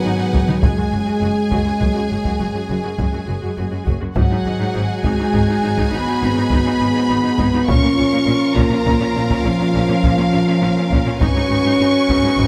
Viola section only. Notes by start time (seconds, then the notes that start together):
Already playing: G#4
0.05 D#4
0.18 D#4
0.33 D#4
0.48 D#4
0.62 F#4 G#4
0.78 F#4
0.92 F#4
1.07 F#4
1.23 F#4
1.52 F#4
1.66 F#4
1.80 F#4
1.95 F#4
2.11 F#4
2.25 F#4
2.40 F#4
2.55 F#4
2.70 F#4
2.85 F#4
2.98 F#4
3.14 F#4
3.27 F#4
3.43 F#4
3.58 F#4
3.72 F#4
3.85 F#4
4.01 F#4
4.16 D#4 F#4
4.31 D#4
4.45 D#4
4.60 D#4
4.75 D#4
5.04 D#4
5.19 D#4
5.33 D#4
5.49 D#4
5.63 D#4
5.77 D#4
5.92 D#4
6.06 D#4
6.22 D#4
6.37 D#4
6.52 D#4
6.66 D#4
6.81 D#4
6.94 D#4
7.09 D#4
7.23 D#4
7.38 D#4
7.55 D#4
7.68 C#4 F4
7.84 C#4
7.99 C#4
8.14 C#4
8.29 C#4
8.58 C#4
8.72 C#4
8.86 C#4
9.00 C#4
9.15 C#4
9.29 C#4
9.45 C#4
9.59 C#4
9.74 C#4
9.89 C#4
10.04 C#4
10.18 C#4
10.32 C#4
10.47 C#4
10.63 C#4
10.78 C#4
10.92 C#4
11.07 C#4
11.20 D#4 F#4
11.36 D#4
11.51 D#4
11.66 D#4
11.81 D#4
12.10 D#4
12.25 D#4
12.39 D#4